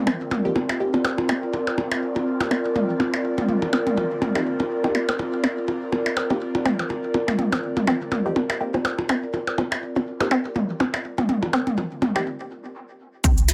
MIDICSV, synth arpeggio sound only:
0, 0, Header, 1, 2, 480
1, 0, Start_track
1, 0, Tempo, 487805
1, 1509, Time_signature, 4, 2, 24, 8
1, 13320, End_track
2, 0, Start_track
2, 0, Title_t, "Synth arpeggio sound"
2, 0, Program_c, 0, 84
2, 68, Note_on_c, 0, 60, 99
2, 132, Note_off_c, 0, 60, 0
2, 549, Note_on_c, 0, 60, 81
2, 575, Note_off_c, 0, 60, 0
2, 923, Note_on_c, 0, 60, 76
2, 944, Note_off_c, 0, 60, 0
2, 1269, Note_on_c, 0, 60, 96
2, 1332, Note_off_c, 0, 60, 0
2, 1748, Note_on_c, 0, 60, 74
2, 1774, Note_off_c, 0, 60, 0
2, 2124, Note_on_c, 0, 60, 75
2, 2144, Note_off_c, 0, 60, 0
2, 2468, Note_on_c, 0, 60, 101
2, 2532, Note_off_c, 0, 60, 0
2, 2948, Note_on_c, 0, 60, 84
2, 2974, Note_off_c, 0, 60, 0
2, 3324, Note_on_c, 0, 60, 76
2, 3344, Note_off_c, 0, 60, 0
2, 3669, Note_on_c, 0, 60, 100
2, 3733, Note_off_c, 0, 60, 0
2, 4149, Note_on_c, 0, 60, 74
2, 4174, Note_off_c, 0, 60, 0
2, 4524, Note_on_c, 0, 60, 76
2, 4544, Note_off_c, 0, 60, 0
2, 4764, Note_on_c, 0, 60, 76
2, 4797, Note_off_c, 0, 60, 0
2, 4868, Note_on_c, 0, 60, 85
2, 4911, Note_off_c, 0, 60, 0
2, 5003, Note_on_c, 0, 60, 75
2, 5037, Note_off_c, 0, 60, 0
2, 5348, Note_on_c, 0, 60, 97
2, 5412, Note_off_c, 0, 60, 0
2, 5828, Note_on_c, 0, 60, 80
2, 5854, Note_off_c, 0, 60, 0
2, 6203, Note_on_c, 0, 60, 74
2, 6223, Note_off_c, 0, 60, 0
2, 6548, Note_on_c, 0, 60, 100
2, 6612, Note_off_c, 0, 60, 0
2, 7029, Note_on_c, 0, 60, 72
2, 7054, Note_off_c, 0, 60, 0
2, 7404, Note_on_c, 0, 60, 76
2, 7424, Note_off_c, 0, 60, 0
2, 7748, Note_on_c, 0, 60, 101
2, 7812, Note_off_c, 0, 60, 0
2, 8228, Note_on_c, 0, 60, 82
2, 8254, Note_off_c, 0, 60, 0
2, 8602, Note_on_c, 0, 60, 76
2, 8623, Note_off_c, 0, 60, 0
2, 8949, Note_on_c, 0, 60, 98
2, 9012, Note_off_c, 0, 60, 0
2, 9429, Note_on_c, 0, 60, 78
2, 9454, Note_off_c, 0, 60, 0
2, 9804, Note_on_c, 0, 60, 73
2, 9824, Note_off_c, 0, 60, 0
2, 10148, Note_on_c, 0, 60, 104
2, 10212, Note_off_c, 0, 60, 0
2, 10628, Note_on_c, 0, 60, 84
2, 10654, Note_off_c, 0, 60, 0
2, 11003, Note_on_c, 0, 60, 77
2, 11024, Note_off_c, 0, 60, 0
2, 11347, Note_on_c, 0, 60, 99
2, 11412, Note_off_c, 0, 60, 0
2, 11828, Note_on_c, 0, 60, 76
2, 11854, Note_off_c, 0, 60, 0
2, 13028, Note_on_c, 0, 60, 82
2, 13071, Note_off_c, 0, 60, 0
2, 13320, End_track
0, 0, End_of_file